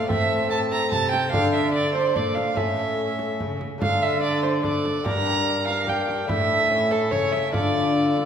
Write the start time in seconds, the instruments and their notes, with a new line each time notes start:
Already playing: cello A#2, bassoon A3
0.06 cello A2, lute A2 A3 C4 A4, bassoon C4, recorder A4, violin E5
0.10 frame drum
0.50 bassoon C4, recorder A4, violin A5
0.71 violin A#5, frame drum
0.91 lute C3, cello C3, violin A5, frame drum
1.11 violin G5, frame drum
1.30 cello D3, lute D3 A3 D4 A4, bassoon D4, recorder A4, violin F5, frame drum
1.53 violin E5
1.74 violin D5
1.94 violin C5, frame drum
2.15 cello A#2, lute A#2, bassoon D4, recorder A4, violin D5, frame drum
2.35 violin F5, frame drum
2.53 cello A2, lute A3 C#4 A4, bassoon C#4, recorder A4, violin E5, frame drum
2.57 lute A2
3.19 frame drum
3.40 cello C#3, lute C#3, frame drum
3.61 frame drum
3.78 cello D3, lute D3 A3 D4 A4, bassoon D4, violin F5, frame drum
3.83 recorder A4
4.02 violin E5
4.22 violin D5
4.43 violin C5, frame drum
4.61 lute A3 D4 A4, bassoon D4, recorder A4, violin D5, frame drum
4.85 frame drum
5.03 cello G2, lute G2 A#3 D4 G4, bassoon D4, recorder A#4, violin A#5, frame drum
5.67 violin F5, frame drum
5.85 lute A#3 D4 G4, bassoon D4, recorder A#4, frame drum
5.89 violin G5
6.09 frame drum
6.25 lute A3 D4 E4, bassoon D4, recorder A4
6.29 lute A2, cello A2, violin E5, frame drum
6.66 lute A3 C#4 E4, recorder A4
6.70 lute A2, cello A2, bassoon C#4
6.91 violin A4, frame drum
7.11 lute C#3, cello C#3, bassoon C#4, recorder A4, violin C#5, frame drum
7.32 violin E5, frame drum
7.50 lute D3 A3 D4 F4, bassoon F4, recorder A4, violin D5
7.54 cello D3, frame drum
8.17 frame drum